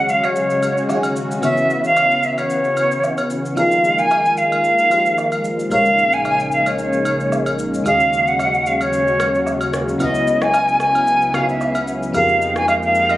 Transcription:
Already playing: analog synth pad C#3 F#3 G#3 C#4 F#4, fm electric piano D#3 C#4 F#4 G#4 D#5, flute F#5
0.09 flute F5, shaker
0.24 flute C#5, high agogo, shaker
0.36 shaker
0.50 shaker
0.63 high agogo, shaker
0.77 shaker
0.88 fm electric piano D#3 C#4 F#4 G#4 F#5, low woodblock, shaker
0.97 fm electric piano G#5
1.03 high agogo, shaker
1.16 shaker
1.31 shaker
1.41 fm electric piano C#3 E3 B3 F#4 C#5, analog synth pad E3 B3, flute E5, high agogo, shaker
1.57 shaker
1.70 shaker
1.84 flute F5, shaker
1.97 high agogo, low woodblock, shaker
2.11 shaker
2.23 flute E5, shaker
2.38 flute C#5, high agogo, shaker
2.50 shaker
2.64 shaker
2.77 high agogo, shaker
2.92 shaker
3.04 low woodblock, shaker
3.18 high agogo, shaker
3.30 shaker
3.45 shaker
3.55 analog synth pad D#3 G#3 A#3 F4 A#4, fm electric piano F3 D#4 F4 G#4 A#4, flute F5, high agogo, shaker
3.72 shaker
3.84 shaker
3.98 flute G#5, shaker
4.11 high agogo, low woodblock, shaker
4.25 shaker
4.37 flute F5, shaker
4.52 high agogo, shaker
4.64 shaker
4.79 shaker
4.90 fm electric piano F3 D#4 G4 G#4 C5, high agogo, shaker
5.06 shaker
5.18 low woodblock, shaker
5.32 high agogo, shaker
5.44 shaker
5.60 shaker
5.69 sub bass A#1, fm electric piano A#2 G#3 D#4 A#4 C#5, analog synth pad C#3 C#4 D#4, flute F5, high agogo, shaker
5.86 shaker
5.99 shaker
6.13 flute G#5, shaker
6.25 high agogo, low woodblock, shaker
6.40 shaker
6.52 flute F5, shaker
6.66 flute C#5, high agogo, shaker
6.79 shaker
6.93 shaker
7.05 high agogo, shaker
7.20 shaker
7.32 low woodblock, shaker
7.46 high agogo, shaker
7.59 shaker
7.74 shaker
7.84 sub bass D#2, analog synth pad C#3 F#3 F#4, fm electric piano D#3 C#4 F#4 G#4 D#5, flute F5, high agogo, shaker
8.00 shaker
8.13 shaker
8.27 flute F#5, shaker
8.39 high agogo, low woodblock, shaker
8.54 shaker
8.66 flute F5, shaker
8.81 flute C#5, high agogo, shaker
8.93 shaker
9.07 shaker
9.20 cross-stick, high agogo, shaker
9.35 shaker
9.47 low woodblock, shaker
9.61 high agogo, shaker
9.74 cross-stick, shaker
9.89 shaker
9.98 sub bass C#2, fm electric piano C#3 B3 E4 F#4 D#5, analog synth pad B3 E4, flute D#5, high agogo, shaker
10.15 shaker
10.27 shaker
10.42 flute G#5, cross-stick, shaker
10.54 high agogo, low woodblock, shaker
10.68 shaker
10.80 flute G#5, cross-stick, shaker
10.95 high agogo, shaker
11.07 shaker
11.22 shaker
11.33 fm electric piano C#3 B3 D#4 F#4 F#5, flute F5, cross-stick, high agogo, shaker
11.40 fm electric piano E4
11.49 flute E5, shaker
11.61 low woodblock, shaker
11.75 high agogo, shaker
11.88 shaker
12.03 shaker
12.12 sub bass F2, fm electric piano F3 D#4 G4 G#4 A#4, analog synth pad F3 G#3 A#3 D#4 G5, flute F5, high agogo, shaker
12.29 shaker
12.42 shaker
12.56 flute G#5, cross-stick, shaker
12.68 flute F5, high agogo, low woodblock, shaker
12.83 flute F5, shaker
12.95 shaker
13.09 flute D#5, high agogo, shaker

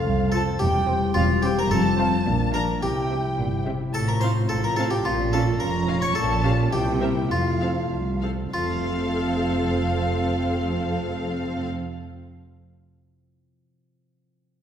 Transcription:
Already playing: harp F2 A3 C4 F4, french horn section C4 A4, harpsichord F4, violin section F5
0.04 cello section C2, double bass section C2, harp C5
0.20 harp A4
0.32 viola section F3 C5, harp F4, harpsichord A4, violin section A5
0.48 harp C4
0.59 double bass section E1, cello section E2, harp E2, harpsichord G4, french horn section G4, violin section G5
0.76 harp G3
0.88 viola section C4 C5, harp C4, violin section G5
1.03 harp C5
1.14 double bass section E1, cello section E2, harpsichord F4, harp G4, violin section F5
1.30 harp C5
1.43 viola section C4 C5, harp C4, harpsichord G4, violin section G5
1.58 harp G3, harpsichord A#4, violin section A#5
1.70 double bass section F1, cello section F2, harp F2, french horn section C4 F4, harpsichord A4, violin section A5
1.84 harp F3
1.98 harp C4, viola section C4 C5, violin section F5
2.13 harp C5
2.26 double bass section A#1, cello section A#2, harp A#2, french horn section A#3 D4
2.41 harp F3
2.54 harp D4, viola section D4 A#4, harpsichord A#4, violin section F5 A#5
2.69 harp A#4
2.81 double bass section C2, cello section C3, harp C3, french horn section C4 E4, harpsichord G4, violin section G5
2.96 harp C4
3.11 viola section C4 G4, harp E4, violin section E5
3.25 harp G4
3.38 double bass section G1, cello section A#2, harp E5
3.53 harp C5
3.66 cello section C3, viola section C4 G4, harp G4, violin section E5
3.80 harp E4
3.94 double bass section A1, cello section A2, harp A2, french horn section C4 F4, harpsichord A4, violin section A5, triangle
4.07 harp C4, harpsichord A#4, violin section A#5
4.20 viola section C4 F4, harp F4, harpsichord C5, violin section F5 C6
4.36 harp C4
4.49 double bass section A1, cello section A2, harpsichord A4, harp F5, violin section A5
4.63 harpsichord A#4, harp C5, violin section A#5
4.76 viola section C4 F4, harp F4, harpsichord A4, violin section F5 A5
4.91 harp C4, harpsichord G4, violin section G5
5.05 double bass section A#1, cello section A#2, harp A#2, french horn section C#4, harpsichord F4, violin section F5
5.19 harp C#4
5.32 viola section C#4 F4, harp F4, harpsichord A4, violin section F5 A5
5.47 harp C#4
5.59 double bass section F1, cello section F2, harpsichord A#4, harp F5, violin section A#5
5.75 harp C#5
5.87 viola section C#4 F4, harp F4, violin section F5
6.00 harp C#4, harpsichord C#5, violin section C#6
6.14 double bass section A#1, cello section A#2, harp A#2, french horn section F4, harpsichord A4, violin section A5
6.31 harp C#4
6.43 viola section C#4 G4, harp F4, violin section F5
6.60 harp G4
6.72 double bass section C2, cello section C3, harp C3, french horn section A#3 E4, harpsichord G4, violin section G5
6.88 harp C4
7.00 viola section C4 A#4, harp E4, violin section E5
7.17 harp A#4
7.29 double bass section F1, cello section F2, harp F3, french horn section A3 F4, harpsichord F4, violin section F5
7.47 harp F4
7.61 viola section C4 A4, harp A4, violin section F5
7.77 harp C5
7.91 cello section C2, double bass section C2, harp A5
8.08 harp F5
8.22 viola section C4 A4, harp C5, violin section F5
8.39 harp A4
8.54 double bass section F1, cello section F2, harp F3, french horn section A3 F4, viola section C4 A4, harpsichord F4, violin section F5
8.63 harp C4
8.70 harp F4
8.77 harp A4
8.84 harp F5

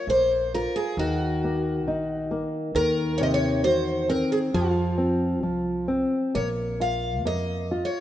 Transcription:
0.07 upright bass A#1, nylon-string guitar A#3, twelve-string acoustic guitar C5
0.55 nylon-string guitar F4, twelve-string acoustic guitar A#4
0.76 twelve-string acoustic guitar G#4
0.97 upright bass D#2, nylon-string guitar D#3, twelve-string acoustic guitar F#4
1.44 nylon-string guitar A#3
1.86 upright bass A#1, nylon-string guitar D#4
2.31 nylon-string guitar A#3
2.75 upright bass D#2, nylon-string guitar D#3, twelve-string acoustic guitar A#4
3.18 nylon-string guitar C3, twelve-string acoustic guitar C#5
3.23 twelve-string acoustic guitar D#5
3.34 twelve-string acoustic guitar C#5
3.64 upright bass E2, nylon-string guitar F#4, twelve-string acoustic guitar C5
4.09 nylon-string guitar C4, twelve-string acoustic guitar A#4
4.32 twelve-string acoustic guitar G#4
4.54 upright bass F2, nylon-string guitar F3, twelve-string acoustic guitar F4
4.98 nylon-string guitar C4
5.43 upright bass C2, nylon-string guitar F3
5.88 nylon-string guitar C4
6.35 upright bass A#1, nylon-string guitar A#3, twelve-string acoustic guitar C#5
6.80 nylon-string guitar F4, twelve-string acoustic guitar F5
7.24 upright bass F2, nylon-string guitar A#3, twelve-string acoustic guitar D#5
7.71 nylon-string guitar F4
7.85 twelve-string acoustic guitar C#5

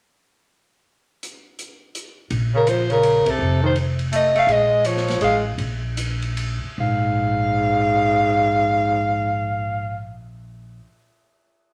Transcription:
1.23 closed hi-hat
1.59 closed hi-hat
1.95 closed hi-hat
2.30 upright bass A#1, ride
2.54 tenor saxophone C#3, soprano saxophone A#4
2.67 tenor saxophone F3, soprano saxophone C5, hi-hat pedal, ride
2.89 tenor saxophone C#3, soprano saxophone A#4, ride
3.03 ride
3.26 tenor saxophone C3, soprano saxophone A4, muted upright bass stroke, kick, ride
3.39 upright bass F1
3.63 tenor saxophone D#3, soprano saxophone C5
3.76 ride
3.99 ride
4.12 tenor saxophone A3, soprano saxophone D#5, hi-hat pedal, ride
4.35 tenor saxophone A3, soprano saxophone F5, ride
4.47 upright bass A#1, tenor saxophone G#3, ride
4.52 soprano saxophone D#5
4.84 tenor saxophone F3, soprano saxophone C#5, hi-hat pedal, ride
4.97 snare
5.08 snare, ride
5.21 upright bass A1, tenor saxophone G#3, soprano saxophone F5, ride
5.58 upright bass A#1, ride
5.97 hi-hat pedal, ride
6.22 ride
6.37 ride
6.64 muted upright bass stroke
6.78 upright bass A#1, tenor saxophone G#2, soprano saxophone F5

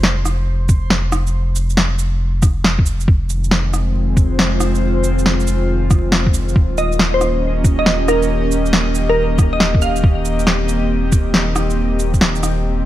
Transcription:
Already playing: sub bass F1
0.03 snare
0.25 cross-stick, shaker
0.69 kick, shaker
0.90 snare
1.12 cross-stick, shaker
1.27 shaker
1.56 shaker
1.70 shaker
1.77 snare
1.99 shaker
2.42 kick, cross-stick, shaker
2.64 snare
2.79 kick
2.86 shaker
3.00 shaker
3.07 analog synth pad D#3, kick
3.22 analog synth pad G#3
3.30 shaker
3.44 shaker
3.49 analog synth pad C4, snare
3.73 analog synth pad F4, cross-stick, shaker
3.88 analog synth pad C5
4.17 kick, shaker
4.39 snare
4.60 cross-stick, shaker
4.75 shaker
5.04 shaker
5.19 shaker
5.26 snare
5.40 shaker
5.47 shaker
5.90 kick, cross-stick, shaker
6.12 snare
6.27 kick
6.34 shaker
6.49 shaker
6.56 sub bass D#1, kick
6.67 analog synth pad A#3 D#5
6.78 synth pluck D#5, shaker
6.92 shaker
6.98 analog synth pad C#4, snare
7.14 synth pluck C5
7.21 cross-stick, shaker
7.30 analog synth pad G4
7.64 kick, shaker
7.79 synth pluck D#5
7.86 snare
8.08 synth pluck A#4, cross-stick, shaker
8.23 shaker
8.51 shaker
8.66 shaker
8.73 snare
8.95 shaker
9.10 synth pluck A#4
9.38 kick, cross-stick, shaker
9.53 synth pluck D#5
9.60 snare
9.75 kick
9.82 synth pluck F5, shaker
9.96 shaker
10.04 kick
10.16 analog synth pad C4
10.25 shaker
10.39 shaker
10.47 snare
10.69 shaker
11.12 kick, shaker
11.34 snare
11.56 cross-stick, shaker
11.70 shaker
11.99 shaker
12.14 kick, shaker
12.21 snare
12.35 shaker
12.43 cross-stick, shaker

